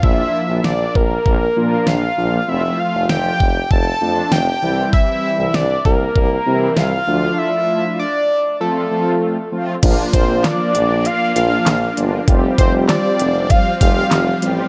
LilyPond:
<<
  \new Staff \with { instrumentName = "Analog synth lead" } { \time 4/4 \key f \major \tempo 4 = 98 e''4 d''8 bes'4. f''4 | e''8 f''8 g''4 a''4 g''4 | e''4 d''8 bes'4. f''4 | e''4 d''4 a'4. r8 |
\key bes \major r8 c''8 d''4 f''8 f''4 r8 | r8 c''8 d''4 f''8 f''4 r8 | }
  \new Staff \with { instrumentName = "Analog polysynth" } { \time 4/4 \key f \major <f bes d' f'>4. r4 <f bes d' f'>8. r16 <f bes d' f'>8 | <f a c' f'>4. r4 <f a c' d'>8. r16 <e g c' e'>8~ | <e g c' e'>4 r4. <e g c' e'>8. r16 <f a d' f'>8~ | <f a d' f'>4 r4 <f a c' f'>8 <f a c' f'>8. r16 <f a c' f'>8 |
\key bes \major <f bes d' f'>4. r4 <f bes d' f'>8. r16 <f bes d' f'>8 | <g c' f' g'>4. r4 <g c' f' g'>8. r16 <g c' f' g'>8 | }
  \new Staff \with { instrumentName = "String machine" } { \time 4/4 \key f \major << { r1 | r1 | r1 | r1 |
\key bes \major <bes d'>1 | <g c'>1 | } \\ { r1 | r1 | r1 | r1 |
f1~ | f1 | } >> }
  \new Staff \with { instrumentName = "Tuba" } { \clef bass \time 4/4 \key f \major bes,,8 r16 bes,,16 bes,,8 bes,,8 bes,,8 bes,8 bes,,8 bes,,8 | f,,8 r16 f,,16 f,,8 f,,8 f,,8 f,8 f,,8 c,8 | r8. c,16 c,8 c,8 c,8 c8 c,8 d,8 | r1 |
\key bes \major bes,,8 bes,,8. r16 bes,,8. r16 bes,,8 bes,,8 g,,8 | f,,8 f,,8. r16 f,,8. r16 f,,8 f,,8 a,,8 | }
  \new DrumStaff \with { instrumentName = "Drums" } \drummode { \time 4/4 bd4 sn8 bd8 bd4 sn4 | r4 sn8 bd8 bd4 sn4 | bd4 sn8 bd8 bd4 sn4 | r4 r4 r4 r4 |
<cymc hh bd>8 <hh bd>8 <hc hh sn>8 hh8 hh8 hh8 <hc hh sn>8 hh8 | <hh bd>8 <hh bd>8 <hc hh sn>8 hh8 <hh bd>8 <hh bd>8 <hc hh sn>8 hh8 | }
>>